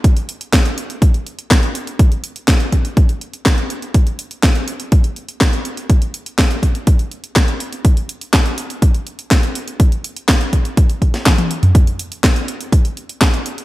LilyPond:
\new DrumStaff \with { instrumentName = "Drums" } \drummode { \time 4/4 \tempo 4 = 123 <hh bd>16 hh16 hh16 hh16 <hc hh bd sn>16 hh16 hh16 hh16 <hh bd>16 hh16 hh16 hh16 <hc hh bd sn>16 hh16 hh16 hh16 | <hh bd>16 hh16 hh16 hh16 <hc hh bd sn>16 hh16 <hh bd>16 hh16 <hh bd>16 hh16 hh16 hh16 <hc hh bd sn>16 hh16 hh16 hh16 | <hh bd>16 hh16 hh16 hh16 <hc hh bd sn>16 hh16 hh16 hh16 <hh bd>16 hh16 hh16 hh16 <hc hh bd sn>16 hh16 hh16 hh16 | <hh bd>16 hh16 hh16 hh16 <hc hh bd sn>16 hh16 <hh bd>16 hh16 <hh bd>16 hh16 hh16 hh16 <hc hh bd sn>16 hh16 hh16 hh16 |
<hh bd>16 hh16 hh16 hh16 <hc hh bd sn>16 hh16 hh16 hh16 <hh bd>16 hh16 hh16 hh16 <hc hh bd sn>16 hh16 hh16 hh16 | <hh bd>16 hh16 hh16 hh16 <hc hh bd sn>16 hh16 <hh bd>16 hh16 <hh bd>16 hh16 <hh bd>16 <hh sn>16 <hc hh bd sn tommh>16 <hh tommh>16 hh16 <hh toml>16 | <hh bd>16 hh16 hh16 hh16 <hc hh bd sn>16 hh16 hh16 hh16 <hh bd>16 hh16 hh16 hh16 <hc hh bd sn>16 hh16 hh16 hh16 | }